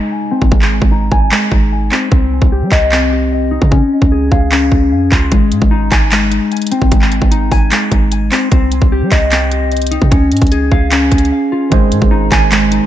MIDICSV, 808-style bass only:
0, 0, Header, 1, 2, 480
1, 0, Start_track
1, 0, Key_signature, -4, "major"
1, 0, Tempo, 400000
1, 620, Time_signature, 4, 2, 24, 8
1, 15437, End_track
2, 0, Start_track
2, 0, Title_t, "808-style bass"
2, 0, Program_c, 0, 38
2, 499, Note_on_c, 0, 32, 101
2, 615, Note_off_c, 0, 32, 0
2, 620, Note_on_c, 0, 32, 109
2, 966, Note_off_c, 0, 32, 0
2, 979, Note_on_c, 0, 32, 98
2, 1325, Note_off_c, 0, 32, 0
2, 1338, Note_on_c, 0, 32, 104
2, 1569, Note_off_c, 0, 32, 0
2, 1819, Note_on_c, 0, 32, 109
2, 2280, Note_off_c, 0, 32, 0
2, 2540, Note_on_c, 0, 36, 112
2, 2886, Note_off_c, 0, 36, 0
2, 2900, Note_on_c, 0, 36, 102
2, 3140, Note_on_c, 0, 55, 97
2, 3158, Note_off_c, 0, 36, 0
2, 3251, Note_off_c, 0, 55, 0
2, 3258, Note_on_c, 0, 36, 100
2, 4296, Note_off_c, 0, 36, 0
2, 4339, Note_on_c, 0, 49, 103
2, 4570, Note_off_c, 0, 49, 0
2, 4820, Note_on_c, 0, 37, 100
2, 5166, Note_off_c, 0, 37, 0
2, 5179, Note_on_c, 0, 37, 105
2, 5640, Note_off_c, 0, 37, 0
2, 5659, Note_on_c, 0, 37, 109
2, 5901, Note_on_c, 0, 41, 99
2, 5919, Note_off_c, 0, 37, 0
2, 6128, Note_off_c, 0, 41, 0
2, 6141, Note_on_c, 0, 37, 105
2, 6371, Note_off_c, 0, 37, 0
2, 6381, Note_on_c, 0, 32, 108
2, 6621, Note_on_c, 0, 44, 100
2, 6639, Note_off_c, 0, 32, 0
2, 6734, Note_off_c, 0, 44, 0
2, 6740, Note_on_c, 0, 32, 100
2, 7086, Note_off_c, 0, 32, 0
2, 7099, Note_on_c, 0, 32, 101
2, 7675, Note_off_c, 0, 32, 0
2, 8179, Note_on_c, 0, 32, 100
2, 8295, Note_off_c, 0, 32, 0
2, 8300, Note_on_c, 0, 32, 114
2, 8646, Note_off_c, 0, 32, 0
2, 8660, Note_on_c, 0, 32, 99
2, 9006, Note_off_c, 0, 32, 0
2, 9018, Note_on_c, 0, 32, 105
2, 9249, Note_off_c, 0, 32, 0
2, 9498, Note_on_c, 0, 32, 107
2, 9960, Note_off_c, 0, 32, 0
2, 10220, Note_on_c, 0, 36, 113
2, 10566, Note_off_c, 0, 36, 0
2, 10579, Note_on_c, 0, 36, 104
2, 10820, Note_on_c, 0, 55, 98
2, 10838, Note_off_c, 0, 36, 0
2, 10931, Note_off_c, 0, 55, 0
2, 10938, Note_on_c, 0, 36, 104
2, 11976, Note_off_c, 0, 36, 0
2, 12019, Note_on_c, 0, 48, 101
2, 12135, Note_off_c, 0, 48, 0
2, 12140, Note_on_c, 0, 37, 105
2, 12379, Note_on_c, 0, 44, 96
2, 12397, Note_off_c, 0, 37, 0
2, 12493, Note_off_c, 0, 44, 0
2, 12500, Note_on_c, 0, 37, 98
2, 12845, Note_off_c, 0, 37, 0
2, 12859, Note_on_c, 0, 37, 101
2, 13320, Note_off_c, 0, 37, 0
2, 13339, Note_on_c, 0, 37, 105
2, 13570, Note_off_c, 0, 37, 0
2, 14060, Note_on_c, 0, 32, 105
2, 14300, Note_on_c, 0, 44, 101
2, 14318, Note_off_c, 0, 32, 0
2, 14414, Note_off_c, 0, 44, 0
2, 14420, Note_on_c, 0, 32, 100
2, 14766, Note_off_c, 0, 32, 0
2, 14779, Note_on_c, 0, 32, 106
2, 15355, Note_off_c, 0, 32, 0
2, 15437, End_track
0, 0, End_of_file